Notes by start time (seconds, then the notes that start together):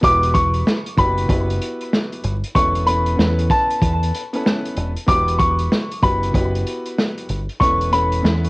0.01 E1 B3 E4 F#4 G4 B4 D6, kick, closed hi-hat
0.23 closed hi-hat
0.34 C#6, kick, closed hi-hat
0.54 closed hi-hat
0.67 snare
0.86 closed hi-hat
0.97 F#1 B3 E4 F#4 G4 B4 B5, kick, closed hi-hat
1.18 closed hi-hat
1.28 F#1 B3 E4 F#4 G4 B4, kick, closed hi-hat
1.50 closed hi-hat
1.61 closed hi-hat
1.81 closed hi-hat
1.93 snare
2.12 closed hi-hat
2.23 G1, closed hi-hat
2.44 closed hi-hat
2.55 E1 B3 C#4 E4 A4 B4 C#6, kick, closed hi-hat
2.75 closed hi-hat
2.86 B3 C#4 E4 A4 B4 B5, closed hi-hat
3.06 closed hi-hat
3.17 E2 B3 C#4 E4 A4 B4, snare
3.39 closed hi-hat
3.50 A5, kick, closed hi-hat
3.71 closed hi-hat
3.82 E2, kick, closed hi-hat
4.03 closed hi-hat
4.14 closed hi-hat
4.33 B3 C#4 E4 A4 B4, closed hi-hat
4.46 snare
4.65 closed hi-hat
4.76 E1, closed hi-hat
4.96 closed hi-hat
5.06 E1 B3 E4 F#4 G4 B4 D6, kick, closed hi-hat
5.28 closed hi-hat
5.39 C#6, kick, closed hi-hat
5.59 closed hi-hat
5.72 snare
5.92 closed hi-hat
6.02 F#1 B3 E4 F#4 G4 B4 B5, kick, closed hi-hat
6.23 closed hi-hat
6.33 F#1 B3 E4 F#4 G4 B4, kick, closed hi-hat
6.55 closed hi-hat
6.67 closed hi-hat
6.86 closed hi-hat
6.99 snare
7.18 closed hi-hat
7.29 G1, closed hi-hat
7.49 closed hi-hat
7.60 E1 B3 C#4 E4 A4 B4 C#6, kick, closed hi-hat
7.81 closed hi-hat
7.91 B3 C#4 E4 A4 B4 B5, closed hi-hat
8.12 closed hi-hat
8.22 E2 B3 C#4 E4 A4 B4, snare
8.44 closed hi-hat